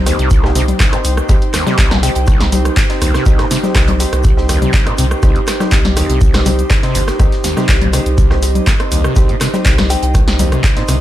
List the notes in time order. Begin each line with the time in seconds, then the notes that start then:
Already playing: C2 D#4 G4 C5 A#5
0.06 D#2 C4 D#4 G4 G5, cross-stick, open hi-hat, shaker
0.19 C2 C3, closed hi-hat, shaker
0.30 kick, closed hi-hat, shaker
0.44 C3 C4 D#4 G4, cross-stick, snare
0.55 C3 C4 D#4 G4, open hi-hat, shaker
0.68 closed hi-hat, low conga, shaker
0.80 C2, kick, cross-stick, snare, clap, closed hi-hat, shaker
0.93 C3 C4 D#4 C5, cross-stick, closed hi-hat
1.04 C2, open hi-hat, shaker
1.17 cross-stick, shaker
1.29 A#1 C2 C4 D#4 G4, kick, closed hi-hat, shaker
1.42 closed hi-hat
1.54 D#2, cross-stick, snare, clap, open hi-hat, shaker
1.67 C3 C4 D#4 G4, snare, low conga, shaker
1.78 C2, kick, snare, clap, closed hi-hat, shaker
1.91 C3, cross-stick, snare, closed hi-hat, low conga
2.03 C3 C4 D#4 G4 G5, open hi-hat, shaker
2.15 C2 G5, closed hi-hat, shaker
2.27 C2, kick, cross-stick, closed hi-hat, shaker
2.40 C3 C4 D#4 G4, snare, closed hi-hat
2.52 C4 D#4 G4, open hi-hat, low conga, shaker
2.65 cross-stick, closed hi-hat, shaker
2.77 A#1, kick, snare, clap, closed hi-hat, shaker
2.90 C4 D#4 C5, snare, closed hi-hat
3.01 C2 D#2, cross-stick, open hi-hat, shaker
3.14 C3, cross-stick, snare, shaker
3.26 C2 C4 D#4 G4, kick, closed hi-hat, shaker
3.39 C3, cross-stick, snare, closed hi-hat
3.51 C3, snare, open hi-hat, shaker
3.63 C4 D#4 G4, snare, low conga, shaker
3.75 C2, kick, cross-stick, snare, clap, closed hi-hat, shaker
3.88 C3, closed hi-hat, low conga
4.00 C4 D#4 G4, open hi-hat, shaker
4.13 C2, cross-stick, closed hi-hat, shaker
4.23 A#1, kick, closed hi-hat, shaker
4.37 C4 D#4 G4, snare
4.49 D#2 C4 D#4 G4, cross-stick, open hi-hat, shaker
4.62 C3, closed hi-hat, low conga, shaker
4.73 kick, snare, clap, closed hi-hat, shaker
4.86 C3 C4 D#4 C5, cross-stick, closed hi-hat
4.98 C2 C3, open hi-hat, shaker
5.11 cross-stick, shaker
5.23 C2 C4 D#4 G4, kick, cross-stick, closed hi-hat, shaker
5.36 C3, closed hi-hat
5.47 cross-stick, snare, clap, open hi-hat, shaker
5.60 C4 D#4 G4, cross-stick, snare, low conga, shaker
5.72 A#1 C2, kick, snare, clap, closed hi-hat, shaker
5.85 snare, closed hi-hat, low conga
5.96 D#2 C4 D#4 G4, cross-stick, open hi-hat, shaker
6.09 C2 C3, closed hi-hat, shaker
6.21 kick, closed hi-hat, shaker
6.33 C3 C4 D#4 G4, cross-stick, snare, closed hi-hat
6.46 C3 C4 D#4 G4, open hi-hat, low conga, shaker
6.59 closed hi-hat, shaker
6.70 C2, kick, cross-stick, snare, clap, closed hi-hat, shaker
6.83 C3 C4 D#4 C5, snare, closed hi-hat
6.95 G1 C2, open hi-hat, shaker
7.07 cross-stick, snare, shaker
7.19 A#1 C2 C4 D#4 G4, kick, cross-stick, closed hi-hat, shaker
7.32 snare, closed hi-hat
7.44 D#2, snare, open hi-hat, shaker
7.57 C3 C4 D#4 G4, cross-stick, snare, low conga, shaker
7.68 C2, kick, snare, clap, closed hi-hat, shaker
7.81 C3, closed hi-hat, low conga
7.93 C3 C4 D#4 G4 D#5, cross-stick, open hi-hat, shaker
8.06 C2, closed hi-hat, shaker
8.18 C2, kick, closed hi-hat, shaker
8.30 C3 C4 D#4 G4, cross-stick, snare
8.42 C4 D#4 G4, open hi-hat, shaker
8.55 closed hi-hat, low conga, shaker
8.67 A#1, kick, cross-stick, snare, clap, closed hi-hat, shaker
8.80 C4 D#4 C5, cross-stick, closed hi-hat
8.92 C2 D#2, open hi-hat, shaker
9.04 C3, cross-stick, shaker
9.16 C2 C4 D#4 G4, kick, closed hi-hat, shaker
9.29 C3, closed hi-hat
9.41 C3, cross-stick, snare, clap, open hi-hat, shaker
9.53 C4 D#4 G4, snare, low conga, shaker
9.65 C2, kick, snare, clap, closed hi-hat, shaker
9.78 C3, cross-stick, snare, closed hi-hat, low conga
9.90 C4 D#4 G4 G5, open hi-hat, shaker
10.02 C2 G5, closed hi-hat, shaker
10.14 A#1, kick, cross-stick, closed hi-hat, shaker
10.27 C4 D#4 G4, snare, closed hi-hat
10.39 D#2 C4 D#4 G4, open hi-hat, low conga, shaker
10.52 C3, cross-stick, closed hi-hat, shaker
10.64 C2, kick, snare, clap, closed hi-hat, shaker
10.77 C3 C4 D#4 C5, snare, closed hi-hat
10.88 C2 C3, cross-stick, open hi-hat, shaker